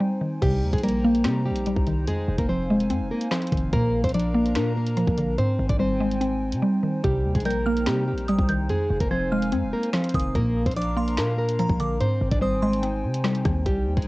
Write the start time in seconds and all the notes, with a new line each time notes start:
Already playing: G#3 C4 D#4 C5 G5 G#5
0.00 G3
0.21 D#3
0.42 C2 C3 G3 D#4 G4 C5 G5 A#5, kick, closed hi-hat, crash
0.63 D#2
0.73 A#1 G#3 G#4, kick, closed hi-hat
0.78 closed hi-hat
0.83 G3 A#3 A#4, closed hi-hat
0.89 closed hi-hat
1.04 A#3
1.15 closed hi-hat
1.24 C3 G3 C4 G4, finger snap, snare, closed hi-hat
1.46 G3 G4
1.51 A#1
1.56 closed hi-hat
1.66 G3, closed hi-hat
1.76 C2, kick
1.87 D#3, closed hi-hat
2.07 F2 G#3 G#4 F5 G#5, closed hi-hat
2.28 F1
2.38 F1 A#3 A#4, kick, closed hi-hat
2.49 F3 C4 C5
2.70 G#3
2.80 closed hi-hat
2.90 F2 C4, closed hi-hat
3.00 F1
3.11 A#3 A#4
3.21 closed hi-hat
3.31 F3 C4 C5, finger snap, snare
3.42 closed hi-hat
3.47 closed hi-hat
3.52 F1 D#3, kick, closed hi-hat
3.57 closed hi-hat
3.73 A#1 A#2 A#3 D4 A#4 A#5, kick, closed hi-hat
4.04 A#1 C4 C5, kick, closed hi-hat
4.09 closed hi-hat
4.14 F3 D4 D5, closed hi-hat
4.19 closed hi-hat
4.34 A#3
4.46 closed hi-hat
4.55 A#2 A#3 D4 A#4, finger snap, snare, closed hi-hat
4.76 A#3 A#4
4.87 closed hi-hat
4.97 F3, closed hi-hat
5.07 A#1, kick
5.18 D3, closed hi-hat
5.38 G#2 C4 D#4 C5 G5 G#5, closed hi-hat
5.59 G#1
5.69 G#1 D4 D5, kick, closed hi-hat
5.79 G3 C4 C5
6.00 G#3
6.11 closed hi-hat
6.21 C4, closed hi-hat
6.52 C3, closed hi-hat
6.62 G3
6.83 D#3
7.04 C2 C3 G3 G4 G5 A#5, kick, closed hi-hat
7.25 D#2
7.35 A#1 G#3 G#4, kick, closed hi-hat
7.40 closed hi-hat
7.45 G3 A#3 A#4 G6, closed hi-hat
7.50 closed hi-hat
7.66 A#3 F6
7.77 closed hi-hat
7.86 C3 G3 C4 G4, finger snap, snare, closed hi-hat
8.08 G3 G4
8.13 A#1
8.18 closed hi-hat
8.28 G3 D#6, closed hi-hat
8.38 C2, kick
8.49 D#3 G6, closed hi-hat
8.69 F2 G#3 G#4 F5 G#5, closed hi-hat
8.90 F1
9.00 F1 A#3 A#4, kick, closed hi-hat
9.11 F3 C4 C5 G#6
9.32 G#3 F6
9.42 closed hi-hat
9.52 F2 C4, closed hi-hat
9.63 F1
9.73 A#3 A#4
9.83 closed hi-hat
9.93 F3 C4 C5, finger snap, snare
10.04 closed hi-hat
10.09 closed hi-hat
10.14 F1 D#3 D#6, kick, closed hi-hat
10.20 closed hi-hat
10.35 A#1 A#2 A#3 D4 A#4 F5 A#5, kick, closed hi-hat
10.66 A#1 C4 C5, kick, closed hi-hat
10.71 closed hi-hat
10.76 F3 D4 D5 D6, closed hi-hat
10.82 closed hi-hat
10.97 A#3 C6
11.08 closed hi-hat
11.17 A#2 A#3 D4 A#4, finger snap, snare, closed hi-hat
11.38 A#3 A#4
11.49 closed hi-hat
11.59 F3 A#5, closed hi-hat
11.70 A#1, kick
11.80 D3 D6, closed hi-hat
12.00 G#2 C4 D#4 C5 G5 G#5, closed hi-hat
12.21 G#1
12.31 G#1 D4 D5, kick, closed hi-hat
12.41 G3 C4 C5 D#6
12.62 G#3 C6
12.73 closed hi-hat
12.83 C4, closed hi-hat
13.04 C3
13.14 closed hi-hat
13.24 G3, finger snap, snare
13.35 closed hi-hat
13.45 D#2 D#3, kick, cross-stick, closed hi-hat
13.66 C2 G3 D#4 G4 C5 G5 A#5, kick, closed hi-hat
13.87 D#2
13.97 A#1 G#3 G#4, kick, closed hi-hat
14.02 closed hi-hat